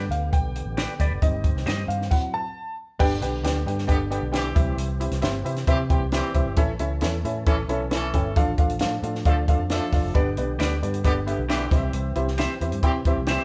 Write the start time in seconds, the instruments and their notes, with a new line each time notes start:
Already playing: tonewheel organ D3 B3 G4
0.09 fingered electric bass D2, upright piano F5, closed hi-hat
0.32 fingered electric bass B1, upright piano G5, kick, closed hi-hat
0.56 closed hi-hat
0.65 fingered electric bass A1
0.77 clean electric guitar G4 B4 D5, snare, closed hi-hat
1.00 fingered electric bass D2, clean electric guitar G4 B4 D5, upright piano D5, kick, closed hi-hat
1.11 fingered electric bass F1
1.21 fingered electric bass G1, tonewheel organ D#3 C4, upright piano G3 C4 D#4 D#5, kick, closed hi-hat
1.44 kick, closed hi-hat
1.55 fingered electric bass C2, snare
1.66 fingered electric bass G2, clean electric guitar G4 C5 D#5, snare, closed hi-hat
1.88 fingered electric bass G2, upright piano F5, closed hi-hat
2.01 snare
2.11 upright piano F#3 C4 E4 F#5, kick, crash
2.34 upright piano A5
2.99 fingered electric bass G1, tonewheel organ D3 B3 G4, upright piano D4 G4 B4 D5 G5, kick, crash
3.21 fingered electric bass B1, upright piano D4 G4 B4 D5 G5, closed hi-hat
3.44 fingered electric bass D2, upright piano D4 G4 B4 D5 G5, snare, closed hi-hat
3.66 fingered electric bass G2, upright piano D4 G4 B4 D5 G5, closed hi-hat
3.78 snare
3.87 fingered electric bass G1, horn section D3 G3 B3 G4, upright piano D4 G4 B4 D5 G5, kick, closed hi-hat
4.10 horn section D3 G3 B3 G4, upright piano D4 G4 B4 D5 G5, closed hi-hat
4.22 fingered electric bass B1
4.32 horn section E3 G3 C4 G4, upright piano D4 G4 B4 D5 G5, snare, closed hi-hat
4.55 fingered electric bass C2, tonewheel organ E3 C4, upright piano C4 E4 G4 C5 E5, kick, closed hi-hat
4.77 fingered electric bass C2, closed hi-hat
5.00 upright piano C4 E4 G4 C5 E5, closed hi-hat
5.11 fingered electric bass C2, snare, closed hi-hat
5.21 fingered electric bass G1, upright piano C4 E4 G4 C5 E5, snare, closed hi-hat
5.44 fingered electric bass C3, upright piano C4 E4 G4 C5 E5, closed hi-hat
5.56 snare, closed hi-hat
5.67 fingered electric bass C3, horn section E3 G3 C4 G4, upright piano C4 E4 G4 C5 E5, kick, closed hi-hat
5.90 horn section E3 G3 C4 G4, upright piano C4 E4 G4 C5 G5, kick, closed hi-hat
6.00 fingered electric bass C2
6.12 horn section E3 G3 C4 G4, upright piano C4 E4 G4 C5 E5, snare, closed hi-hat
6.34 fingered electric bass C2, upright piano C4 E4 G4 C5 E5, kick, closed hi-hat
6.45 fingered electric bass G1
6.56 fingered electric bass A1, upright piano C#4 E4 A4 C#5 E5, tonewheel organ C#4 A4, kick, closed hi-hat
6.79 fingered electric bass C#2, upright piano C#4 E4 A4 C#5 E5, closed hi-hat
7.01 fingered electric bass E2, upright piano C#4 E4 A4 C#5 E5, snare, closed hi-hat
7.24 fingered electric bass A2, upright piano C#4 E4 A4 C#5 E5, closed hi-hat
7.46 fingered electric bass A1, horn section E3 A3 C#4 A4, upright piano C#4 E4 A4 C#5 E5, kick, closed hi-hat
7.68 fingered electric bass B1, horn section E3 A3 C#4 A4, upright piano C#4 E4 A4 C#5 E5, closed hi-hat
7.91 horn section E3 A3 C#4 A4, upright piano C#4 E4 A4 C#5 E5, snare, closed hi-hat
8.13 fingered electric bass G1, upright piano C#4 E4 A4 C#5 G5, kick, closed hi-hat
8.36 fingered electric bass A1, tonewheel organ F3 D4, upright piano D4 F4 A4 D5 F5, kick, closed hi-hat
8.58 fingered electric bass A1, upright piano D4 F4 A4 D5 F5, kick, closed hi-hat
8.70 closed hi-hat
8.79 fingered electric bass A2, upright piano D4 F4 A4 D5 F5, snare, closed hi-hat
9.02 fingered electric bass A2, upright piano D4 F4 A4 D5 F5, closed hi-hat
9.15 snare
9.25 fingered electric bass D2, horn section F3 A3 D4 A4, upright piano D4 F4 A4 D5 F5, kick, closed hi-hat
9.48 horn section F3 A3 D4 A4, upright piano D4 F4 A4 D5 F5, kick, closed hi-hat
9.59 fingered electric bass F2
9.70 horn section F3 A3 D4 A4, upright piano D4 F4 A4 D5 E5, snare, closed hi-hat
9.92 fingered electric bass F1, upright piano D4 F4 A4 D5 F5, kick, snare, open hi-hat
10.03 fingered electric bass F1
10.14 fingered electric bass G1, tonewheel organ D3 B3 G4, upright piano B3 D4 G4 B4 D5, kick, closed hi-hat
10.37 fingered electric bass B1, upright piano B3 D4 G4 B4 D5, closed hi-hat
10.59 fingered electric bass D2, upright piano B3 D4 G4 B4 D5, clean electric guitar G4 B4 D5, snare, closed hi-hat
10.82 fingered electric bass G2, upright piano B3 D4 G4 B4 D5, closed hi-hat
10.94 closed hi-hat
11.04 fingered electric bass G1, horn section D3 G3 B3 G4, upright piano B3 D4 G4 B4 D5, kick, closed hi-hat
11.26 horn section D3 G3 B3 G4, upright piano B3 D4 G4 B4 E5, closed hi-hat
11.38 fingered electric bass B1
11.49 horn section E3 G3 C4 G4, upright piano B3 D4 G4 B4 E5, clean electric guitar G4 B4 D5, snare, closed hi-hat
11.71 fingered electric bass C2, tonewheel organ E3 C4, upright piano C4 E4 G4 C5 D#5, kick, snare, closed hi-hat
11.78 upright piano E5
11.93 fingered electric bass C2, closed hi-hat
12.15 fingered electric bass C2, upright piano C4 E4 G4 C5 E5, closed hi-hat
12.28 snare
12.38 upright piano C4 E4 G4 C5 E5, clean electric guitar G4 C5 E5, snare, closed hi-hat
12.61 fingered electric bass E2, upright piano C4 E4 G4 C5 E5, closed hi-hat
12.72 fingered electric bass G2, closed hi-hat
12.83 fingered electric bass C3, horn section E3 G3 C4 G4, upright piano C4 E4 G4 C5 G5, kick, closed hi-hat
13.05 horn section E3 G3 C4 G4, upright piano C4 E4 G4 C5 E5, kick, closed hi-hat
13.16 fingered electric bass C2
13.27 horn section E3 G3 C4 G4, upright piano C4 E4 G4 C5 E5, clean electric guitar G4 C5 E5, snare, closed hi-hat